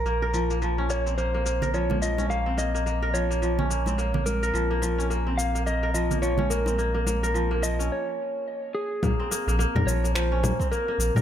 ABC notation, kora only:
X:1
M:4/4
L:1/16
Q:"Swing 16ths" 1/4=107
K:Bbm
V:1 name="Kora"
B, B F, B, F, D B, C B, B, B, B F, B, F, D | B, C B, B, B, B F, B, F, D B, C B, B, B, B | F, B, F, D B, C B, B, B, B F, B, F, D B, C | B, B, B, B F, B, F, D z8 |
B, C B, B, B, B F, B, F, D B, C B, B, B, B |]